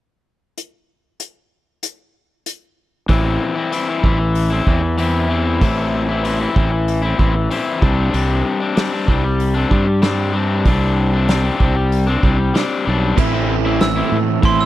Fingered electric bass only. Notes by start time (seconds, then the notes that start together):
3.08 A1
4.03 A1
4.67 E2
5.61 A1
6.56 A1
7.19 A1
7.82 C2
8.14 C2
9.08 C2
9.71 G2
10.65 C2
11.60 C2
12.23 C2
12.87 B1
13.17 A1
14.12 A2
14.43 A2